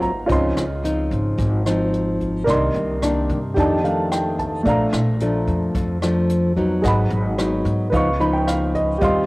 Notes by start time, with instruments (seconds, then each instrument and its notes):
Already playing: upright bass G#1, nylon-string guitar G#2 F#3 C4 F4, grand piano C5 F5 F#5 A#5
0.02 grand piano A#5, kick, closed hi-hat
0.26 upright bass C#2, nylon-string guitar C#3 F3 C4 D#4, grand piano C#4 F4 D#5, kick, closed hi-hat
0.32 grand piano C6
0.57 upright bass C#2, cross-stick, closed hi-hat
0.84 nylon-string guitar F3 C4 D#4, closed hi-hat
1.11 upright bass G#1, kick, closed hi-hat
1.38 upright bass G#1, nylon-string guitar G#2, kick, closed hi-hat
1.66 nylon-string guitar F3 C4 D#4, cross-stick, closed hi-hat
1.94 closed hi-hat
2.21 kick, closed hi-hat
2.44 upright bass C2, nylon-string guitar C3 D#3 A#3 D4, grand piano D#4 A#4 D5, kick, cross-stick, closed hi-hat
2.50 grand piano C6
2.74 upright bass C2, closed hi-hat
3.02 nylon-string guitar D#3 A#3 D4, cross-stick, closed hi-hat
3.29 upright bass G2, kick, closed hi-hat
3.54 nylon-string guitar F2 D#3 A3 D4, upright bass F2, grand piano D#4 G4 D5, kick, closed hi-hat
3.59 grand piano A5
3.84 nylon-string guitar D#3 A3 D4, grand piano F5, closed hi-hat
4.12 grand piano G5, cross-stick, closed hi-hat
4.39 grand piano A5, kick, closed hi-hat
4.63 upright bass A#1, nylon-string guitar A#2 F3 A3 D4, grand piano A3 D5, kick, closed hi-hat
4.67 grand piano F5 A#5
4.93 upright bass A#1, cross-stick, closed hi-hat
5.20 nylon-string guitar F3 A3 D4, closed hi-hat
5.47 upright bass F2, kick, closed hi-hat
5.75 upright bass F2, nylon-string guitar F2, kick, closed hi-hat
6.02 nylon-string guitar F3 A3 D4, cross-stick, closed hi-hat
6.30 closed hi-hat
6.57 nylon-string guitar F#3 B3 D#4, kick, closed hi-hat
6.82 upright bass G#1, nylon-string guitar G#2, grand piano G#4 D#5 F#5, kick, cross-stick, closed hi-hat
6.88 grand piano B5
7.10 upright bass G#1, closed hi-hat
7.38 nylon-string guitar F#3 B3 D#4, cross-stick, closed hi-hat
7.65 upright bass G#2, kick, closed hi-hat
7.90 upright bass C#2, nylon-string guitar C#3 F3 B3 D#4, grand piano B4 D#5, kick, closed hi-hat
7.94 grand piano F5 C#6
8.20 nylon-string guitar F3 B3 D#4, grand piano B5, closed hi-hat
8.33 grand piano G5
8.47 grand piano F5, cross-stick, closed hi-hat
8.75 grand piano D#5, kick, closed hi-hat
8.98 upright bass D#2, nylon-string guitar D#3 G3 C4, grand piano G4 D#5 F5, kick, closed hi-hat
9.02 nylon-string guitar F4, grand piano C6